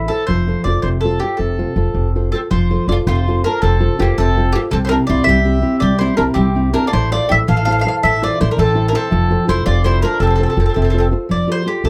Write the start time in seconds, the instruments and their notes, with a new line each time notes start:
Already playing: mandolin E4
0.08 nylon-string guitar E4 A4 C5, mandolin A4
0.27 upright bass F1, nylon-string guitar F3, mandolin C5
0.47 nylon-string guitar F4 A4 C5
0.64 upright bass F1, nylon-string guitar F4 A4 C5, mandolin D5
0.82 upright bass F1, nylon-string guitar C3, mandolin C5
1.01 mandolin A4
1.05 nylon-string guitar F4 A4 C5
1.20 nylon-string guitar F4 A4 C5, mandolin G4
1.37 upright bass F1, nylon-string guitar C3, mandolin A4
1.59 nylon-string guitar F4 A4 C5
1.76 upright bass F1, nylon-string guitar F4 A4 C5
1.94 upright bass F1, nylon-string guitar C3
2.16 nylon-string guitar F4 A4 C5
2.32 mandolin C4 A4, nylon-string guitar F4 A4 C5
2.50 upright bass F1, nylon-string guitar F3, mandolin F4 C5
2.71 nylon-string guitar F4 A4 C5
2.88 upright bass F1, nylon-string guitar F4 A4 C5, mandolin D5
2.92 mandolin F4
3.07 upright bass F1, nylon-string guitar C3, mandolin F4 C5
3.28 nylon-string guitar F4 A4 C5
3.44 mandolin D4 A#4, nylon-string guitar F4 A4 C5
3.62 upright bass F1, nylon-string guitar C3, mandolin C4 A4
3.80 nylon-string guitar F4 A4 C5
3.99 upright bass F1, mandolin A#3 G4, nylon-string guitar F4 A4 C5
4.18 upright bass F1, nylon-string guitar C3, mandolin C4 A4
4.37 nylon-string guitar F4 A4 C5
4.53 mandolin A#3 G4, nylon-string guitar F4 A4 C5
4.71 upright bass C2, nylon-string guitar C3, mandolin C4 A4
4.85 mandolin E4 C5
4.89 nylon-string guitar C4 E4 G4, mandolin D4 A#4
5.07 upright bass C2, nylon-string guitar C4 E4 G4, mandolin F4 D5
5.24 upright bass C2, nylon-string guitar G3, mandolin E5
5.29 mandolin G4
5.45 nylon-string guitar C4 E4 G4
5.62 nylon-string guitar C4 E4 G4
5.80 upright bass C2, nylon-string guitar G3, mandolin G4 D5
5.99 nylon-string guitar C4 E4 G4, mandolin E4 C5
6.17 upright bass C2, nylon-string guitar C4 E4 G4, mandolin D4 A#4
6.34 upright bass C2, nylon-string guitar G3, mandolin C4 G4
6.55 nylon-string guitar C4 E4 G4
6.73 nylon-string guitar C4 E4 G4, mandolin D4 A#4
6.87 mandolin F4 D5
6.92 upright bass A1, nylon-string guitar A3, mandolin E4 C5
7.11 nylon-string guitar E4 A4 C5, mandolin F4 D5
7.29 upright bass A1, nylon-string guitar E4 A4 C5, mandolin G4 E5
7.47 upright bass A1, nylon-string guitar E3, mandolin A4 F5
7.56 mandolin A4 F5
7.65 nylon-string guitar E4 A4 C5, mandolin A4 F5
7.71 mandolin A4 F5
7.79 mandolin A4 F5
7.85 nylon-string guitar E4 A4 C5, mandolin A4 F5
8.03 upright bass A1, nylon-string guitar E3, mandolin A4 E5
8.22 nylon-string guitar E4 A4 C5, mandolin F4 D5
8.40 upright bass A1, nylon-string guitar E4 A4 C5, mandolin E4 C5
8.51 mandolin D4 A#4
8.57 upright bass A1, nylon-string guitar E3, mandolin C4 A4
8.74 nylon-string guitar E4 A4 C5
8.88 mandolin D4 A#4
8.93 mandolin C4 A4, nylon-string guitar E4 A4 C5
9.11 upright bass F1, nylon-string guitar F3
9.30 nylon-string guitar F4 A4 C5
9.47 upright bass F1, mandolin E4 C5, nylon-string guitar F4 A4 C5
9.65 upright bass F1, nylon-string guitar C3, mandolin F4 D5
9.84 mandolin E4 C5, nylon-string guitar F4 A4 C5
10.02 mandolin D4 A#4, nylon-string guitar F4 A4 C5
10.20 upright bass F1, nylon-string guitar C3, mandolin C4 A4
10.27 mandolin C4 A4
10.36 mandolin C4 A4
10.40 nylon-string guitar F4 A4 C5, mandolin A4
10.46 mandolin C4 A4
10.52 mandolin C4
10.57 upright bass F1, mandolin C4 A4, nylon-string guitar F4 A4 C5
10.66 mandolin C4 A4
10.74 upright bass F1, nylon-string guitar C3, mandolin C4 A4
10.82 mandolin C4 A4
10.90 mandolin C4 A4, nylon-string guitar F4
10.94 nylon-string guitar A4 C5
10.98 mandolin C4 A4
11.11 nylon-string guitar F4 A4 C5
11.29 upright bass F1, nylon-string guitar F3, mandolin D5
11.47 nylon-string guitar F4 G4 A4
11.52 mandolin C5
11.66 nylon-string guitar F4 G4 A4, mandolin G4
11.84 upright bass C2, nylon-string guitar C3, mandolin A4